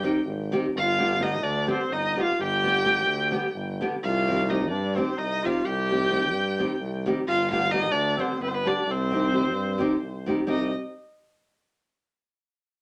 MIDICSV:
0, 0, Header, 1, 5, 480
1, 0, Start_track
1, 0, Key_signature, -3, "minor"
1, 0, Tempo, 467654
1, 765, Time_signature, 7, 3, 24, 8
1, 6518, Tempo, 456969
1, 13303, End_track
2, 0, Start_track
2, 0, Title_t, "Violin"
2, 0, Program_c, 0, 40
2, 0, Note_on_c, 0, 79, 118
2, 489, Note_off_c, 0, 79, 0
2, 791, Note_on_c, 0, 77, 121
2, 1258, Note_on_c, 0, 75, 103
2, 1274, Note_off_c, 0, 77, 0
2, 1474, Note_on_c, 0, 74, 103
2, 1489, Note_off_c, 0, 75, 0
2, 1743, Note_off_c, 0, 74, 0
2, 1756, Note_on_c, 0, 72, 93
2, 1976, Note_on_c, 0, 75, 106
2, 1991, Note_off_c, 0, 72, 0
2, 2245, Note_off_c, 0, 75, 0
2, 2282, Note_on_c, 0, 77, 102
2, 2465, Note_off_c, 0, 77, 0
2, 2494, Note_on_c, 0, 79, 127
2, 3893, Note_off_c, 0, 79, 0
2, 4141, Note_on_c, 0, 77, 115
2, 4618, Note_on_c, 0, 75, 93
2, 4633, Note_off_c, 0, 77, 0
2, 4815, Note_off_c, 0, 75, 0
2, 4822, Note_on_c, 0, 74, 86
2, 5098, Note_on_c, 0, 72, 91
2, 5113, Note_off_c, 0, 74, 0
2, 5322, Note_on_c, 0, 75, 108
2, 5337, Note_off_c, 0, 72, 0
2, 5596, Note_on_c, 0, 77, 91
2, 5611, Note_off_c, 0, 75, 0
2, 5803, Note_on_c, 0, 79, 113
2, 5819, Note_off_c, 0, 77, 0
2, 7264, Note_off_c, 0, 79, 0
2, 7491, Note_on_c, 0, 77, 113
2, 7722, Note_off_c, 0, 77, 0
2, 7728, Note_on_c, 0, 77, 117
2, 7945, Note_on_c, 0, 75, 121
2, 7961, Note_off_c, 0, 77, 0
2, 8164, Note_on_c, 0, 74, 110
2, 8179, Note_off_c, 0, 75, 0
2, 8468, Note_on_c, 0, 72, 89
2, 8484, Note_off_c, 0, 74, 0
2, 8682, Note_off_c, 0, 72, 0
2, 8702, Note_on_c, 0, 71, 91
2, 8755, Note_on_c, 0, 72, 92
2, 8771, Note_off_c, 0, 71, 0
2, 8823, Note_on_c, 0, 71, 114
2, 8838, Note_off_c, 0, 72, 0
2, 8957, Note_on_c, 0, 74, 88
2, 8972, Note_off_c, 0, 71, 0
2, 9206, Note_on_c, 0, 72, 108
2, 9222, Note_off_c, 0, 74, 0
2, 10651, Note_off_c, 0, 72, 0
2, 10871, Note_on_c, 0, 75, 89
2, 11098, Note_off_c, 0, 75, 0
2, 13303, End_track
3, 0, Start_track
3, 0, Title_t, "Clarinet"
3, 0, Program_c, 1, 71
3, 0, Note_on_c, 1, 67, 115
3, 500, Note_off_c, 1, 67, 0
3, 793, Note_on_c, 1, 65, 88
3, 1261, Note_on_c, 1, 63, 76
3, 1276, Note_off_c, 1, 65, 0
3, 1464, Note_on_c, 1, 62, 85
3, 1479, Note_off_c, 1, 63, 0
3, 1731, Note_off_c, 1, 62, 0
3, 1737, Note_on_c, 1, 60, 84
3, 1976, Note_on_c, 1, 63, 98
3, 1992, Note_off_c, 1, 60, 0
3, 2246, Note_off_c, 1, 63, 0
3, 2257, Note_on_c, 1, 65, 93
3, 2452, Note_off_c, 1, 65, 0
3, 2471, Note_on_c, 1, 67, 111
3, 3881, Note_off_c, 1, 67, 0
3, 4149, Note_on_c, 1, 65, 93
3, 4600, Note_on_c, 1, 63, 85
3, 4616, Note_off_c, 1, 65, 0
3, 4810, Note_off_c, 1, 63, 0
3, 4825, Note_on_c, 1, 62, 70
3, 5083, Note_on_c, 1, 60, 78
3, 5099, Note_off_c, 1, 62, 0
3, 5306, Note_on_c, 1, 63, 93
3, 5321, Note_off_c, 1, 60, 0
3, 5578, Note_on_c, 1, 65, 91
3, 5594, Note_off_c, 1, 63, 0
3, 5796, Note_on_c, 1, 67, 113
3, 5812, Note_off_c, 1, 65, 0
3, 7261, Note_off_c, 1, 67, 0
3, 7467, Note_on_c, 1, 65, 105
3, 7714, Note_off_c, 1, 65, 0
3, 7726, Note_on_c, 1, 65, 86
3, 7943, Note_on_c, 1, 63, 97
3, 7959, Note_off_c, 1, 65, 0
3, 8158, Note_on_c, 1, 62, 88
3, 8174, Note_off_c, 1, 63, 0
3, 8422, Note_on_c, 1, 60, 85
3, 8438, Note_off_c, 1, 62, 0
3, 8641, Note_off_c, 1, 60, 0
3, 8647, Note_on_c, 1, 59, 76
3, 8707, Note_on_c, 1, 60, 79
3, 8722, Note_off_c, 1, 59, 0
3, 8783, Note_on_c, 1, 59, 77
3, 8799, Note_off_c, 1, 60, 0
3, 8933, Note_on_c, 1, 62, 95
3, 8948, Note_off_c, 1, 59, 0
3, 9195, Note_on_c, 1, 60, 100
3, 9211, Note_off_c, 1, 62, 0
3, 10645, Note_off_c, 1, 60, 0
3, 10841, Note_on_c, 1, 63, 69
3, 11082, Note_off_c, 1, 63, 0
3, 13303, End_track
4, 0, Start_track
4, 0, Title_t, "Nylon-string guitar"
4, 0, Program_c, 2, 24
4, 31, Note_on_c, 2, 51, 85
4, 33, Note_on_c, 2, 55, 74
4, 38, Note_on_c, 2, 60, 79
4, 44, Note_on_c, 2, 63, 87
4, 46, Note_on_c, 2, 67, 93
4, 168, Note_off_c, 2, 51, 0
4, 168, Note_off_c, 2, 55, 0
4, 172, Note_off_c, 2, 60, 0
4, 172, Note_off_c, 2, 63, 0
4, 175, Note_off_c, 2, 67, 0
4, 532, Note_on_c, 2, 51, 97
4, 539, Note_on_c, 2, 55, 75
4, 540, Note_on_c, 2, 60, 83
4, 545, Note_on_c, 2, 63, 84
4, 547, Note_on_c, 2, 67, 101
4, 671, Note_off_c, 2, 51, 0
4, 672, Note_off_c, 2, 55, 0
4, 675, Note_off_c, 2, 60, 0
4, 677, Note_off_c, 2, 63, 0
4, 678, Note_off_c, 2, 67, 0
4, 1005, Note_on_c, 2, 50, 68
4, 1010, Note_on_c, 2, 55, 66
4, 1018, Note_on_c, 2, 59, 65
4, 1020, Note_on_c, 2, 62, 65
4, 1028, Note_on_c, 2, 67, 86
4, 1140, Note_off_c, 2, 50, 0
4, 1144, Note_off_c, 2, 55, 0
4, 1145, Note_off_c, 2, 59, 0
4, 1148, Note_off_c, 2, 62, 0
4, 1152, Note_off_c, 2, 67, 0
4, 1226, Note_on_c, 2, 50, 75
4, 1232, Note_on_c, 2, 59, 69
4, 1233, Note_on_c, 2, 55, 69
4, 1237, Note_on_c, 2, 62, 66
4, 1243, Note_on_c, 2, 67, 81
4, 1358, Note_off_c, 2, 50, 0
4, 1360, Note_off_c, 2, 55, 0
4, 1362, Note_off_c, 2, 59, 0
4, 1362, Note_off_c, 2, 62, 0
4, 1366, Note_off_c, 2, 67, 0
4, 1715, Note_on_c, 2, 50, 82
4, 1719, Note_on_c, 2, 55, 75
4, 1725, Note_on_c, 2, 59, 64
4, 1726, Note_on_c, 2, 67, 88
4, 1732, Note_on_c, 2, 62, 76
4, 1855, Note_off_c, 2, 50, 0
4, 1857, Note_off_c, 2, 55, 0
4, 1859, Note_off_c, 2, 59, 0
4, 1861, Note_off_c, 2, 67, 0
4, 1864, Note_off_c, 2, 62, 0
4, 2213, Note_on_c, 2, 50, 67
4, 2221, Note_on_c, 2, 55, 65
4, 2230, Note_on_c, 2, 59, 58
4, 2234, Note_on_c, 2, 62, 70
4, 2237, Note_on_c, 2, 67, 73
4, 2356, Note_off_c, 2, 50, 0
4, 2360, Note_off_c, 2, 55, 0
4, 2365, Note_off_c, 2, 59, 0
4, 2366, Note_off_c, 2, 62, 0
4, 2366, Note_off_c, 2, 67, 0
4, 2700, Note_on_c, 2, 50, 72
4, 2705, Note_on_c, 2, 55, 62
4, 2710, Note_on_c, 2, 59, 64
4, 2716, Note_on_c, 2, 62, 67
4, 2719, Note_on_c, 2, 67, 75
4, 2831, Note_off_c, 2, 50, 0
4, 2833, Note_off_c, 2, 55, 0
4, 2837, Note_off_c, 2, 59, 0
4, 2838, Note_off_c, 2, 62, 0
4, 2841, Note_off_c, 2, 67, 0
4, 2914, Note_on_c, 2, 50, 66
4, 2921, Note_on_c, 2, 55, 56
4, 2925, Note_on_c, 2, 59, 65
4, 2928, Note_on_c, 2, 62, 63
4, 2933, Note_on_c, 2, 67, 83
4, 3045, Note_off_c, 2, 50, 0
4, 3049, Note_off_c, 2, 55, 0
4, 3049, Note_off_c, 2, 59, 0
4, 3051, Note_off_c, 2, 62, 0
4, 3054, Note_off_c, 2, 67, 0
4, 3397, Note_on_c, 2, 50, 86
4, 3405, Note_on_c, 2, 55, 74
4, 3413, Note_on_c, 2, 59, 74
4, 3413, Note_on_c, 2, 62, 75
4, 3419, Note_on_c, 2, 67, 87
4, 3538, Note_off_c, 2, 50, 0
4, 3542, Note_off_c, 2, 55, 0
4, 3543, Note_off_c, 2, 59, 0
4, 3546, Note_off_c, 2, 62, 0
4, 3547, Note_off_c, 2, 67, 0
4, 3908, Note_on_c, 2, 50, 82
4, 3912, Note_on_c, 2, 55, 73
4, 3918, Note_on_c, 2, 59, 80
4, 3921, Note_on_c, 2, 62, 77
4, 3924, Note_on_c, 2, 67, 85
4, 4043, Note_off_c, 2, 50, 0
4, 4046, Note_off_c, 2, 55, 0
4, 4047, Note_off_c, 2, 59, 0
4, 4047, Note_off_c, 2, 62, 0
4, 4051, Note_off_c, 2, 67, 0
4, 4388, Note_on_c, 2, 51, 72
4, 4401, Note_on_c, 2, 55, 63
4, 4401, Note_on_c, 2, 60, 71
4, 4406, Note_on_c, 2, 63, 57
4, 4413, Note_on_c, 2, 67, 67
4, 4514, Note_off_c, 2, 51, 0
4, 4520, Note_off_c, 2, 55, 0
4, 4520, Note_off_c, 2, 60, 0
4, 4524, Note_off_c, 2, 63, 0
4, 4525, Note_off_c, 2, 67, 0
4, 4607, Note_on_c, 2, 51, 74
4, 4607, Note_on_c, 2, 55, 63
4, 4613, Note_on_c, 2, 60, 65
4, 4619, Note_on_c, 2, 63, 62
4, 4623, Note_on_c, 2, 67, 76
4, 4728, Note_off_c, 2, 55, 0
4, 4729, Note_off_c, 2, 51, 0
4, 4733, Note_off_c, 2, 60, 0
4, 4734, Note_off_c, 2, 63, 0
4, 4737, Note_off_c, 2, 67, 0
4, 5087, Note_on_c, 2, 51, 67
4, 5097, Note_on_c, 2, 55, 63
4, 5100, Note_on_c, 2, 60, 69
4, 5104, Note_on_c, 2, 63, 63
4, 5110, Note_on_c, 2, 67, 89
4, 5219, Note_off_c, 2, 51, 0
4, 5224, Note_off_c, 2, 60, 0
4, 5225, Note_off_c, 2, 55, 0
4, 5228, Note_off_c, 2, 63, 0
4, 5230, Note_off_c, 2, 67, 0
4, 5588, Note_on_c, 2, 51, 69
4, 5592, Note_on_c, 2, 55, 59
4, 5595, Note_on_c, 2, 60, 66
4, 5607, Note_on_c, 2, 63, 68
4, 5609, Note_on_c, 2, 67, 74
4, 5718, Note_off_c, 2, 51, 0
4, 5720, Note_off_c, 2, 60, 0
4, 5721, Note_off_c, 2, 55, 0
4, 5728, Note_off_c, 2, 63, 0
4, 5728, Note_off_c, 2, 67, 0
4, 6060, Note_on_c, 2, 51, 73
4, 6065, Note_on_c, 2, 55, 68
4, 6070, Note_on_c, 2, 60, 57
4, 6074, Note_on_c, 2, 63, 71
4, 6078, Note_on_c, 2, 67, 73
4, 6184, Note_off_c, 2, 51, 0
4, 6185, Note_off_c, 2, 55, 0
4, 6189, Note_off_c, 2, 60, 0
4, 6190, Note_off_c, 2, 63, 0
4, 6193, Note_off_c, 2, 67, 0
4, 6257, Note_on_c, 2, 51, 81
4, 6266, Note_on_c, 2, 55, 68
4, 6272, Note_on_c, 2, 60, 71
4, 6278, Note_on_c, 2, 63, 62
4, 6281, Note_on_c, 2, 67, 70
4, 6387, Note_off_c, 2, 51, 0
4, 6392, Note_off_c, 2, 55, 0
4, 6395, Note_off_c, 2, 60, 0
4, 6396, Note_off_c, 2, 63, 0
4, 6399, Note_off_c, 2, 67, 0
4, 6764, Note_on_c, 2, 51, 89
4, 6770, Note_on_c, 2, 60, 78
4, 6773, Note_on_c, 2, 55, 68
4, 6778, Note_on_c, 2, 63, 82
4, 6783, Note_on_c, 2, 67, 89
4, 6896, Note_off_c, 2, 51, 0
4, 6897, Note_off_c, 2, 55, 0
4, 6898, Note_off_c, 2, 60, 0
4, 6902, Note_off_c, 2, 63, 0
4, 6904, Note_off_c, 2, 67, 0
4, 7261, Note_on_c, 2, 51, 83
4, 7267, Note_on_c, 2, 55, 75
4, 7274, Note_on_c, 2, 60, 68
4, 7275, Note_on_c, 2, 63, 86
4, 7280, Note_on_c, 2, 67, 92
4, 7397, Note_off_c, 2, 51, 0
4, 7398, Note_off_c, 2, 55, 0
4, 7403, Note_off_c, 2, 60, 0
4, 7403, Note_off_c, 2, 63, 0
4, 7406, Note_off_c, 2, 67, 0
4, 7736, Note_on_c, 2, 50, 77
4, 7743, Note_on_c, 2, 55, 66
4, 7745, Note_on_c, 2, 59, 70
4, 7748, Note_on_c, 2, 62, 68
4, 7754, Note_on_c, 2, 67, 70
4, 7868, Note_off_c, 2, 50, 0
4, 7869, Note_off_c, 2, 55, 0
4, 7872, Note_off_c, 2, 59, 0
4, 7872, Note_off_c, 2, 62, 0
4, 7876, Note_off_c, 2, 67, 0
4, 7962, Note_on_c, 2, 50, 66
4, 7969, Note_on_c, 2, 55, 62
4, 7972, Note_on_c, 2, 59, 63
4, 7974, Note_on_c, 2, 67, 76
4, 7980, Note_on_c, 2, 62, 59
4, 8087, Note_off_c, 2, 50, 0
4, 8091, Note_off_c, 2, 55, 0
4, 8091, Note_off_c, 2, 59, 0
4, 8093, Note_off_c, 2, 67, 0
4, 8096, Note_off_c, 2, 62, 0
4, 8432, Note_on_c, 2, 50, 71
4, 8437, Note_on_c, 2, 55, 64
4, 8442, Note_on_c, 2, 59, 72
4, 8448, Note_on_c, 2, 62, 64
4, 8455, Note_on_c, 2, 67, 80
4, 8575, Note_off_c, 2, 50, 0
4, 8578, Note_off_c, 2, 55, 0
4, 8580, Note_off_c, 2, 59, 0
4, 8583, Note_off_c, 2, 62, 0
4, 8586, Note_off_c, 2, 67, 0
4, 8934, Note_on_c, 2, 50, 71
4, 8941, Note_on_c, 2, 55, 62
4, 8946, Note_on_c, 2, 59, 60
4, 8948, Note_on_c, 2, 62, 65
4, 8954, Note_on_c, 2, 67, 85
4, 9077, Note_off_c, 2, 50, 0
4, 9081, Note_off_c, 2, 55, 0
4, 9083, Note_off_c, 2, 62, 0
4, 9084, Note_off_c, 2, 59, 0
4, 9088, Note_off_c, 2, 67, 0
4, 9417, Note_on_c, 2, 51, 70
4, 9427, Note_on_c, 2, 55, 66
4, 9435, Note_on_c, 2, 60, 60
4, 9436, Note_on_c, 2, 63, 68
4, 9443, Note_on_c, 2, 67, 81
4, 9551, Note_off_c, 2, 51, 0
4, 9557, Note_off_c, 2, 55, 0
4, 9558, Note_off_c, 2, 60, 0
4, 9561, Note_off_c, 2, 63, 0
4, 9563, Note_off_c, 2, 67, 0
4, 9636, Note_on_c, 2, 51, 68
4, 9646, Note_on_c, 2, 55, 65
4, 9650, Note_on_c, 2, 60, 63
4, 9658, Note_on_c, 2, 63, 68
4, 9660, Note_on_c, 2, 67, 75
4, 9767, Note_off_c, 2, 51, 0
4, 9772, Note_off_c, 2, 55, 0
4, 9775, Note_off_c, 2, 60, 0
4, 9776, Note_off_c, 2, 63, 0
4, 9779, Note_off_c, 2, 67, 0
4, 10121, Note_on_c, 2, 51, 85
4, 10127, Note_on_c, 2, 55, 75
4, 10132, Note_on_c, 2, 60, 65
4, 10141, Note_on_c, 2, 63, 80
4, 10144, Note_on_c, 2, 67, 99
4, 10261, Note_off_c, 2, 51, 0
4, 10262, Note_off_c, 2, 55, 0
4, 10266, Note_off_c, 2, 60, 0
4, 10271, Note_off_c, 2, 63, 0
4, 10271, Note_off_c, 2, 67, 0
4, 10628, Note_on_c, 2, 51, 78
4, 10635, Note_on_c, 2, 55, 72
4, 10637, Note_on_c, 2, 60, 66
4, 10641, Note_on_c, 2, 63, 73
4, 10651, Note_on_c, 2, 67, 77
4, 10764, Note_off_c, 2, 51, 0
4, 10768, Note_off_c, 2, 55, 0
4, 10768, Note_off_c, 2, 60, 0
4, 10771, Note_off_c, 2, 63, 0
4, 10776, Note_off_c, 2, 67, 0
4, 10843, Note_on_c, 2, 55, 90
4, 10849, Note_on_c, 2, 63, 84
4, 10850, Note_on_c, 2, 60, 72
4, 10856, Note_on_c, 2, 67, 91
4, 11084, Note_off_c, 2, 55, 0
4, 11085, Note_off_c, 2, 60, 0
4, 11087, Note_off_c, 2, 63, 0
4, 11089, Note_off_c, 2, 67, 0
4, 13303, End_track
5, 0, Start_track
5, 0, Title_t, "Tuba"
5, 0, Program_c, 3, 58
5, 263, Note_on_c, 3, 32, 100
5, 565, Note_off_c, 3, 32, 0
5, 769, Note_on_c, 3, 31, 110
5, 1452, Note_on_c, 3, 38, 118
5, 1467, Note_off_c, 3, 31, 0
5, 1753, Note_off_c, 3, 38, 0
5, 1946, Note_on_c, 3, 31, 86
5, 2250, Note_off_c, 3, 31, 0
5, 2448, Note_on_c, 3, 31, 112
5, 3139, Note_on_c, 3, 38, 107
5, 3154, Note_off_c, 3, 31, 0
5, 3438, Note_off_c, 3, 38, 0
5, 3640, Note_on_c, 3, 31, 93
5, 3938, Note_off_c, 3, 31, 0
5, 4146, Note_on_c, 3, 36, 122
5, 4823, Note_on_c, 3, 43, 116
5, 4838, Note_off_c, 3, 36, 0
5, 5118, Note_off_c, 3, 43, 0
5, 5316, Note_on_c, 3, 36, 85
5, 5612, Note_off_c, 3, 36, 0
5, 5803, Note_on_c, 3, 36, 115
5, 6485, Note_on_c, 3, 43, 100
5, 6500, Note_off_c, 3, 36, 0
5, 6785, Note_off_c, 3, 43, 0
5, 6990, Note_on_c, 3, 36, 95
5, 7291, Note_off_c, 3, 36, 0
5, 7487, Note_on_c, 3, 31, 106
5, 8163, Note_on_c, 3, 38, 115
5, 8179, Note_off_c, 3, 31, 0
5, 8467, Note_off_c, 3, 38, 0
5, 8666, Note_on_c, 3, 31, 86
5, 8970, Note_off_c, 3, 31, 0
5, 9158, Note_on_c, 3, 36, 113
5, 9843, Note_on_c, 3, 43, 108
5, 9858, Note_off_c, 3, 36, 0
5, 10147, Note_off_c, 3, 43, 0
5, 10341, Note_on_c, 3, 36, 77
5, 10646, Note_off_c, 3, 36, 0
5, 10852, Note_on_c, 3, 36, 99
5, 11088, Note_off_c, 3, 36, 0
5, 13303, End_track
0, 0, End_of_file